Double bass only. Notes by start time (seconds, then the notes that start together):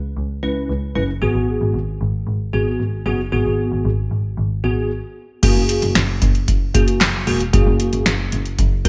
0.17 C#2
0.43 C#2
0.69 C#2
0.96 F#1
1.22 G#1
1.35 G#1
1.61 G#1
1.74 G#1
2.01 G#1
2.27 G#1
2.53 G#1
2.80 G#1
3.06 F#1
3.32 G#1
3.45 G#1
3.72 G#1
3.85 G#1
4.11 G#1
4.38 G#1
4.64 G#1
5.43 F#1
5.56 F#1
5.82 F#1
5.96 F#1
6.22 F#1
6.48 F#1
6.75 F#1
7.01 F#1
7.27 E1
7.53 F#1
7.67 F#1
7.93 F#1
8.06 F#1
8.33 F#1
8.59 F#1
8.85 F#1